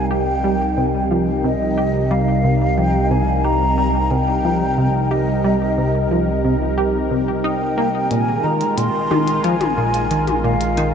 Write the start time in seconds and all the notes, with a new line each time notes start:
Already playing: C2 C3 G3 D#4 A#4 G#5
0.11 G4 G5
0.44 G3
0.77 C3
1.11 F3
1.44 C3 D#5
1.78 G4
2.11 G3 F5
2.44 C3
2.78 F3 G5
3.11 C3 G#5
3.44 G4 A#5
3.78 G3
4.11 C3 G5
4.45 F3
4.78 C3
5.11 G4 D#5
5.44 G3
5.78 C3
6.11 F3
6.44 C3
6.78 G4
7.11 C3
7.44 D#4 G5
7.78 A#3
8.11 A#1 A#2 D#3 G#3 F4 G#5, closed hi-hat
8.44 D#3 A#5
8.61 closed hi-hat
8.77 A#2 C6, closed hi-hat
9.11 D#3, high tom
9.28 closed hi-hat
9.44 F3 G#5, closed hi-hat
9.61 closed hi-hat, high tom
9.78 A#2
9.94 closed hi-hat
10.11 D#3, closed hi-hat
10.27 closed hi-hat, high tom
10.44 A#2 F5
10.61 closed hi-hat
10.77 D#3, closed hi-hat